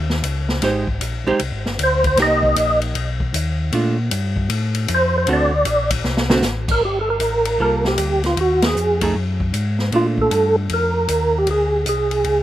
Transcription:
Already playing: D#2
0.10 snare
0.23 C#2, kick, hi-hat pedal, ride
0.49 snare
0.62 G#1 G#3 D#4 G4 C5, kick, snare, ride
0.87 kick
1.01 A#1, kick, hi-hat pedal, ride
1.26 A#1 G#3 D#4 G4 C5
1.39 C2, kick, ride
1.52 G#1
1.65 G1, snare
1.78 D2, kick, hi-hat pedal, ride
1.83 C5
2.04 C5, kick, ride
2.17 C2 A#3 D#4 G4, kick, snare, ride
2.22 D#5
2.43 kick
2.56 A#1, kick, hi-hat pedal, ride
2.81 ride
2.95 B1, kick, ride
3.20 kick
3.34 D#2, kick, hi-hat pedal, ride
3.72 A#2 A3 D4 F4, kick, ride
4.11 G2, kick, hi-hat pedal, ride
4.36 kick
4.49 A2, kick, ride
4.75 ride
4.88 F2, kick, hi-hat pedal, ride
4.95 C5
5.18 C5
5.27 D2 D3 A3 C4 F#4, kick, ride
5.33 D5
5.65 A#1, kick, hi-hat pedal, ride
5.90 kick, ride
6.04 C2, snare
6.17 snare
6.30 D3 A3 C4 F#4, snare
6.42 A1, snare, hi-hat pedal
6.68 A#4, kick, crash
6.81 G1 G4, kick
7.01 A4
7.10 A#4
7.20 A1, kick, hi-hat pedal, ride
7.45 ride
7.59 C2 G3 A#3 F4 A4 A#4, kick
7.85 G4, snare
7.98 D2, kick, hi-hat pedal, ride
8.23 F4, snare, ride
8.37 D#2 F#4, kick, ride
8.62 snare, ride
8.66 G#4
8.76 F2, hi-hat pedal
9.01 A3 D#4 G#4, kick, ride
9.15 F#2, kick
9.40 kick
9.53 G#2, kick, hi-hat pedal, ride
9.79 snare
9.92 A#2 A3 D4 F4, kick, ride
10.18 A4, kick
10.31 G2, kick, hi-hat pedal, ride
10.69 F2, kick, ride
10.74 A#4
11.08 D#2, kick, hi-hat pedal, ride
11.38 G4
11.47 D2, kick, ride
11.51 G#4
11.86 C2 G#4, kick, hi-hat pedal, ride
12.11 ride
12.24 C#2, kick, ride

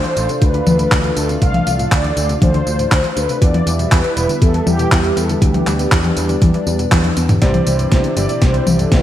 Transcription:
Already playing: A3 D4 F4 C5
0.04 E3, closed hi-hat
0.17 A1 A3, closed hi-hat, tambourine
0.29 C3, closed hi-hat, tambourine
0.41 D2 D3 B4, kick, closed hi-hat, tambourine
0.54 D3, closed hi-hat
0.67 D2 F3, high tom, tambourine
0.79 A2, closed hi-hat, tambourine
0.92 D2 D4, kick, clap, closed hi-hat, tambourine
1.04 E3, closed hi-hat
1.16 D2 A3 A4, closed hi-hat, tambourine
1.29 C3, closed hi-hat, tambourine
1.42 C2 D3 F5, kick, closed hi-hat, tambourine
1.54 D3, closed hi-hat, high tom
1.67 C2 F3, closed hi-hat, tambourine
1.79 A2, closed hi-hat, tambourine
1.92 D2 D4 D5, kick, clap, closed hi-hat
2.04 E3, closed hi-hat
2.17 D2 A3, closed hi-hat, tambourine
2.29 C3, closed hi-hat, tambourine
2.42 D2 D3 C5, kick, closed hi-hat, high tom, tambourine
2.54 D3, closed hi-hat
2.67 D2 F3, tambourine
2.79 A2, closed hi-hat, tambourine
2.91 D2 D4, kick, clap, closed hi-hat, tambourine
3.04 E3, closed hi-hat
3.16 D2 A3 B4, closed hi-hat, tambourine
3.29 C3, closed hi-hat, tambourine
3.41 E2 E3 G3 B3 E4 D5, kick, closed hi-hat, tambourine
3.54 E3, closed hi-hat, high tom
3.66 E2 G3, closed hi-hat, tambourine
3.79 B2, closed hi-hat, tambourine
3.92 E2 E4 B4, kick, clap, closed hi-hat, tambourine
4.04 E3, closed hi-hat
4.17 E1 B3, closed hi-hat, tambourine
4.29 D3, closed hi-hat, tambourine
4.42 E2 E3 A4, kick, closed hi-hat, tambourine
4.54 E3, closed hi-hat
4.67 E2 G3 G4, high tom, tambourine
4.79 B2, closed hi-hat, tambourine
4.92 E2 E4, kick, clap, closed hi-hat, tambourine
5.04 E3, closed hi-hat
5.17 E2 B3 A4, closed hi-hat, tambourine
5.29 D3, closed hi-hat, tambourine
5.42 D2 E3 D4 G4, kick, closed hi-hat, tambourine
5.54 E3, closed hi-hat, high tom
5.67 D2 G3, clap, closed hi-hat, tambourine
5.79 B2, closed hi-hat, tambourine
5.92 E2 E4, kick, clap, closed hi-hat
6.04 E3, closed hi-hat, high tom
6.17 E2 B3, closed hi-hat, tambourine
6.29 D3, closed hi-hat, tambourine
6.42 E2 E3, kick, closed hi-hat, high tom, tambourine
6.54 E3, closed hi-hat
6.67 E2 G3, tambourine
6.79 B2, closed hi-hat, tambourine
6.92 E2 E4, kick, clap, closed hi-hat, high tom, tambourine
7.04 E3, closed hi-hat, high tom
7.17 E2 B3, closed hi-hat, tambourine
7.29 D3, closed hi-hat, mid tom, tambourine
7.41 C2 C3 E3 C4 D4 E4 G4 C5 D5, kick, snare, closed hi-hat, tambourine
7.54 C3, closed hi-hat, high tom
7.67 C2 E3, closed hi-hat, tambourine
7.79 G2, closed hi-hat, tambourine
7.92 C2 C4, kick, snare, closed hi-hat, tambourine
8.04 D3, closed hi-hat
8.17 G1 C3 G3 C4 E4 G4 D5, closed hi-hat, tambourine
8.29 B2, closed hi-hat, tambourine
8.42 C2 C3 C5, kick, snare, closed hi-hat, tambourine
8.54 C3, closed hi-hat
8.66 C2 E3, high tom, tambourine
8.79 G2 A4, closed hi-hat, tambourine
8.91 C2 C4 B4, kick, snare, closed hi-hat, tambourine

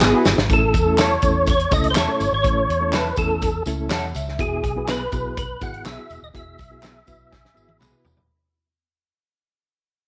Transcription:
Already playing: G#4
0.01 G#1 B3 F#4 G#4, snare, clap, tambourine
0.13 B3 E4 F#4 G#4 B4
0.25 G1, snare, tambourine
0.38 G#1, snare
0.49 A1 A3 C#4 E4 A4, kick, closed hi-hat, tambourine
0.53 A4
0.74 E2, kick, closed hi-hat, tambourine
0.85 A3 C#4 E4 A4
0.98 C#4 E4 A4 C#5, snare, clap, closed hi-hat, tambourine
1.22 E2 A3 C#4 E4 A4, kick, closed hi-hat, tambourine
1.47 C#5, kick, closed hi-hat, tambourine
1.59 closed hi-hat
1.71 C#2 A3 C#4 E4 A4 D#5, kick, closed hi-hat, tambourine
1.84 closed hi-hat
1.91 C5
1.95 E2 C#4 E4 A4 C#5, snare, clap, closed hi-hat, tambourine
2.08 A3 C#4 E4 A4
2.20 G1, closed hi-hat, tambourine
2.32 G#1 C#5
2.44 A1 A3 C#4 E4 A4, kick, closed hi-hat
2.69 E2, closed hi-hat
2.81 A3 C#4 E4 A4
2.93 C#4 E4 A4 B4, snare, clap, closed hi-hat, tambourine
3.16 E2 A3 C#4 E4 A4, kick, closed hi-hat, tambourine
3.42 kick, closed hi-hat, tambourine
3.66 C#2 A3 C#4 E4 A4, closed hi-hat, tambourine
3.90 E2 C#4 E4 A4 F#5, snare, clap, closed hi-hat, tambourine
4.15 C#2 E5, closed hi-hat, tambourine
4.29 snare
4.39 E1 B3 E4 F#4 G#4, kick, closed hi-hat, tambourine
4.64 B1, kick, closed hi-hat
4.76 B3 E4 F#4 B4
4.87 B3 F#4 G#4 B4, snare, clap, closed hi-hat, tambourine
5.12 B1 B3 E4 F#4 G#4, kick, closed hi-hat, tambourine
5.37 B4, kick, closed hi-hat, tambourine
5.61 G#1 B3 E4 F#4 G#4 F#5, kick, closed hi-hat, tambourine
5.74 closed hi-hat
5.85 B1 B3 F#4 G#4 E5, snare, clap, closed hi-hat, tambourine
5.97 B3 E4 F#4 G#4
6.10 E1, closed hi-hat, tambourine
6.22 D#1 D#5
6.33 E1 B3 E4 F#4 G#4 E5, kick, closed hi-hat
6.58 B1, kick, closed hi-hat, tambourine
6.70 B3 E4 F#4 G#4
6.83 B3 F#4 G#4, snare, clap, closed hi-hat, tambourine
7.06 B1 B3 E4 F#4 B4 E5, kick, closed hi-hat, tambourine
7.32 G#5, kick, snare, tambourine
7.45 snare
7.54 G#1 B3 E4 F#4 G#4, tambourine
7.69 high tom
7.79 B1 B3 F#4 G#4 B5, clap, mid tom, tambourine
7.91 B3 E4 F#4 B4
8.05 E1, floor tom, tambourine
8.17 D#1, floor tom

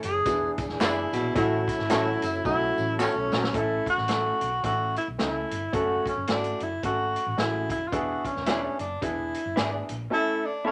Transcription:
Already playing: E3 C#4 A4
0.03 F#1 G#4, closed hi-hat, tambourine
0.25 E1 B3 D4 E4 G#4, kick, closed hi-hat, tambourine
0.58 E1, kick, closed hi-hat, tambourine
0.69 snare
0.80 F#1 B3 D4 E4 G#4 D5, snare, clap, closed hi-hat, tambourine
1.13 A#1 B2, closed hi-hat, tambourine
1.35 A1 A2 F#3 A3 C#4 E4 F#4 A4, kick, closed hi-hat, tambourine
1.68 kick, closed hi-hat, tambourine
1.79 G#1, snare
1.89 A1 A3 C#4 E4 F#4 A4 C#5, snare, clap, closed hi-hat, tambourine
2.22 F#1, closed hi-hat, tambourine
2.45 B1 A3 C#4 E4 F#4, kick, tambourine
2.78 A1, tambourine
2.99 A3 C#4 E4 F#4 A4 C#5, clap, tambourine
3.16 B1
3.32 A#1 F#2, snare, tambourine
3.44 snare
3.53 A1 A3 C#4 E4 A4, kick, closed hi-hat
3.86 F#4, kick, closed hi-hat
3.98 A1, snare
4.08 A3 C#4 E4 A4, snare, closed hi-hat
4.41 B1, closed hi-hat
4.63 A1 A3 C#4 E4 F#4 A4, kick, closed hi-hat
4.96 E4, closed hi-hat
5.08 B1
5.18 C#2 A3 C#4 E4 A4, snare, closed hi-hat
5.51 G1, closed hi-hat
5.73 F#1 A3 C#4 F#4 A4, kick, closed hi-hat
6.06 C#4, kick, closed hi-hat
6.17 F#1
6.27 G#1 A3 C#4 D4 F#4 A4, snare, closed hi-hat
6.44 closed hi-hat
6.60 F#1 E4, closed hi-hat
6.83 G#1 A3 C#4 F#4 A4, kick, closed hi-hat
7.16 closed hi-hat
7.26 A1
7.37 A1 A3 C#4 E4 F#4 G#4, snare, closed hi-hat
7.70 F1 E4, kick, closed hi-hat
7.88 B3 F4
7.92 E1 D4 E4 F#4 G#4, kick, closed hi-hat
8.25 C#4, kick, closed hi-hat
8.36 E1, snare
8.46 B3 C#4 D4 E4 G#4 D5, snare, closed hi-hat
8.79 F#1 D4, closed hi-hat
9.01 E1 B3 D4 E4 G#4, kick, closed hi-hat
9.34 closed hi-hat
9.45 F#1
9.56 G#1 B3 D4 E4 G#4 D5, snare, closed hi-hat
9.89 A#1, closed hi-hat
10.10 A3 C#4 E4 A4
10.46 D4
10.64 A3 C#4 E4 A4 C#5

